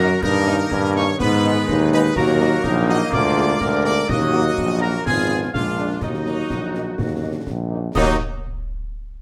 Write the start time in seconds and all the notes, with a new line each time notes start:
Already playing: F#2 F#4 A#4 A#5
0.22 G2 D#3 A#3 D#4 A#4 A#5, concert bass drum, snare, crash
0.35 snare
0.47 A#3 C#4 D#4, snare
0.71 G2 C#4, concert bass drum, snare
0.95 A#3 C#4 D#4 C#5 C#6, snare
1.19 G#2 G#3 B3 B4 B5, concert bass drum, snare
1.44 G#3 B3 D#4, snare
1.56 snare
1.68 D#2 D#4, concert bass drum, snare
1.92 G#3 B3 D#4 B4 B5, snare
2.04 snare
2.15 D#2 F#3 A#3 F#4 A#4 A#5, concert bass drum, snare, crash
2.28 snare
2.40 A#3 D#4 F#4, snare
2.64 A#1 D#4, concert bass drum, snare
2.88 A#3 D#4 F#4 D#5 D#6, snare
3.12 D2 G#3 F4 D5 D6, concert bass drum, snare
3.36 A#3 F4 G#4, snare
3.49 snare
3.61 D2 A#4, concert bass drum, snare
3.85 A#3 F4 G#4 D5 D6, snare
3.97 snare
4.09 D#2 F#3 A#3 F#4 D#5 D#6, concert bass drum, snare, crash
4.21 snare
4.33 A#3 D#4 F#4, snare
4.58 A#1, concert bass drum, snare
4.81 A#3 D#4 F#4 A#4 A#5, snare
5.05 G#1 F3 B3 F4 G#4 G#5, concert bass drum, snare
5.29 G#3 B3 F4, snare
5.43 snare
5.53 A#1 G#3 A#3 D4 F4 F5, concert bass drum, snare
5.78 G#3 A#3 D4, snare
5.90 snare
6.01 D#2 F#3 A#3 D#4 F#4 D#5, concert bass drum, snare, crash
6.14 snare
6.26 F#3 A#3 D#4, snare
6.50 A#1, concert bass drum, snare
6.74 F#3 A#3 D#4, snare
6.98 D#2, concert bass drum, snare
7.22 F#3 A#3 D#4
7.47 A#1, concert bass drum, snare
7.70 F#3 A#3 D#4
7.95 D#2 F#3 A#3 D#4 F#4 D#5 D#6, concert bass drum, snare, crash